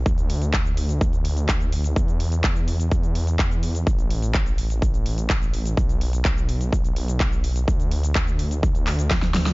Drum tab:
HH |xxoxxxoxxxoxxxox|xxoxxxoxxxoxxxox|xxoxxxoxxxoxxxox|xxoxxxoxxxoxxxox|
SH |xx-xxx-xxx-xxx-x|xx-xxx-xxx-xxx-x|xx-xxx-xxx-xxx-x|xx-xxx-xxx-xxx-x|
CP |----x-------x---|----x-------x---|----x-------x---|----x-------x---|
SD |----------------|----------------|----------------|----------------|
BD |o---o---o---o---|o---o---o---o---|o---o---o---o---|o---o---o---o---|

HH |xxoxxxoxxxoxxxox|
SH |xx-xxx-xxx-xxx-x|
CP |----x-----x-x---|
SD |------------oooo|
BD |o---o---o---o---|